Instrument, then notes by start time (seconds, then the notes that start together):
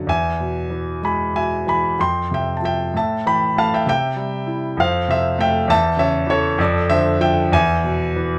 grand piano
Already playing: A5
0.07 E2 E5 G#5
0.40 B2
0.70 E3
1.02 G#3 G#5 B5
1.34 B2 E5 G#5
1.67 E3 G#5 B5
1.99 F2 G5 C6
2.31 C3 E5 G5
2.57 A5
2.62 F3 E5 G5
2.94 A2 E5 A5
3.26 E3 G5 B5
3.56 A3 F5 A5
3.74 E5 G5
3.86 C3 E5 G5
4.16 G3
4.47 E4
4.77 F2 C5 F5
5.08 C3 C5 E5
5.38 A3 E5 G5
5.68 E2 E5 A5
5.96 C#3 C#5 E5
6.27 E3 A4 C#5
6.58 F2 A4 D5
6.89 D3 C5 E5
7.20 F3 E5 G5
7.52 E2 E5 G#5
7.84 B2
8.16 E3